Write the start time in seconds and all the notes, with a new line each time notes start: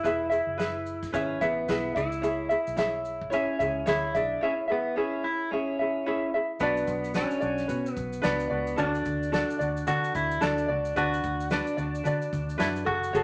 Already playing: E4
0.03 E1 E4 G#4 B4 E5, kick, shaker
0.30 E4 G#4 E5, shaker
0.47 F#1
0.58 E4 G#4 B4 E5, snare, shaker
0.86 shaker
1.03 kick, snare, shaker
1.12 G#1 C#4 E4 G#4 B4 E5, kick, shaker
1.41 A1 B3 E4 G#4 E5, kick, shaker
1.68 B1 E4 G#4 B4 E5, snare, shaker
1.95 C#2 E4 G#4 E5, kick, shaker
2.12 shaker
2.22 E4 G#4 C#5 E5, shaker
2.49 E4 G#4 E5, shaker
2.67 B1, shaker
2.76 E4 G#4 C#5 E5, snare, shaker
3.05 shaker
3.21 kick
3.30 C#4 E4 G#4 C#5 E5, shaker
3.59 C#2 E4 G#4 E5, kick, shaker
3.86 D2 E4 G#4 C#5 E5, snare, shaker
4.14 B1 D4 E4 G#4 E5, kick, shaker
4.41 C#4 E4 G#4 C#5 E5
4.68 E4 G#4 E5
4.72 B3
4.96 C#4 E4 G#4 C#5 E5
5.24 E4
5.51 C#4 E4 G#4 C#5 E5
5.79 E4 G#4 E5
6.06 E4 G#4 C#5 E5
6.34 E4 G#4 E5
6.60 B1 B3 D4 F#4 B4 D5, kick, shaker
6.77 shaker
6.87 B1, kick, shaker
7.04 shaker
7.14 C#4 D4 F#4 B4 D5, snare, shaker
7.31 shaker
7.40 B1 D4 F#4 D5, shaker
7.58 snare, shaker
7.68 B2 F#4 B4, kick, shaker
7.86 shaker
7.94 B1 B3, kick, shaker
8.13 shaker
8.22 C#2 B3 D4 F#4 B4 D5, snare, shaker
8.40 shaker
8.50 C#2 D4 F#4 D5
8.67 shaker
8.76 D2 D4 F#4 A4 D5, kick, shaker
8.95 shaker
9.05 D2, kick, shaker
9.23 shaker
9.32 D4 F#4 A4 D5, snare, shaker
9.50 shaker
9.59 D2 D4 F#4 D5, shaker
9.77 shaker
9.87 D3 D4 F#4 A4 D5, kick, shaker
10.04 shaker
10.15 D2 E4, kick, shaker
10.31 shaker
10.41 D2 D4 F#4 A4 D5, snare, shaker
10.58 shaker
10.68 C#2 D4 F#4 D5
10.85 shaker
10.96 D2 D4 F#4 B4 D5, kick, shaker
11.13 shaker
11.23 D2, kick, shaker
11.40 shaker
11.50 D4 F#4 B4 D5, snare, shaker
11.67 shaker
11.77 D2 D4 F#4 D5, shaker
11.95 shaker
12.04 D3 D4 F#4 B4 D5, kick, shaker
12.22 shaker
12.33 D2, kick, shaker
12.49 shaker
12.58 F#2 D4 E4 F#4 B4 D5, snare, shaker
12.76 shaker
12.85 F#1 F#4 G#4 A4, kick
13.03 shaker
13.13 F#1 F#4 G#4 A4 C#5, shaker